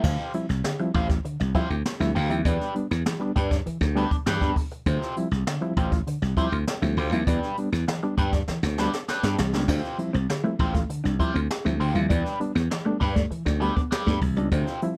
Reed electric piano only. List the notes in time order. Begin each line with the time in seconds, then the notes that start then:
0.04 D3
0.19 C4 E4
0.34 F3 G3 C4 E4
0.65 D3
0.80 F3 G3 C4 E4
0.95 C4 E4
1.25 D3
1.55 F3 G3 C4 E4
1.70 C4 E4
2.00 F3 G3 C4 E4
2.15 D3
2.30 F3 G3 C4 E4
2.60 B3 D4
2.75 G3 B3 D4
3.05 E3
3.20 G3 B3 D4
3.66 E3
3.96 G3 B3 D4
4.11 B3 D4
4.26 E3
4.41 G3 B3 D4
4.87 D3
5.02 C4 E4
5.17 F3 G3 C4 E4
5.47 D3
5.61 F3 G3 C4 E4
5.77 C4 E4
6.07 D3
6.37 F3 G3 C4 E4
6.82 F3 G3 C4 E4
6.97 D3
7.12 F3 G3 C4 E4
7.28 E3
7.43 B3 D4
7.58 G3 B3 D4
7.88 E3
8.03 G3 B3 D4
8.48 E3
8.78 G3 B3 D4
9.23 G3 B3 D4
9.39 E3
9.53 G3 B3 D4
9.69 D3
9.84 C4 E4
9.99 F3 G3 C4 E4
10.29 D3
10.43 F3 G3 C4 E4
10.59 C4 E4
10.89 D3
11.19 F3 G3 C4 E4
11.65 F3 G3 C4 E4
11.80 D3
11.95 F3 G3 C4 E4
12.10 E3
12.26 B3 D4
12.40 G3 B3 D4
12.71 E3
12.86 G3 B3 D4
13.32 E3
13.62 G3 B3 D4
13.77 B3 D4
14.07 G3 B3 D4
14.22 E3
14.38 G3 B3 D4
14.53 D3
14.67 C4 E4
14.82 F3 G3 C4 E4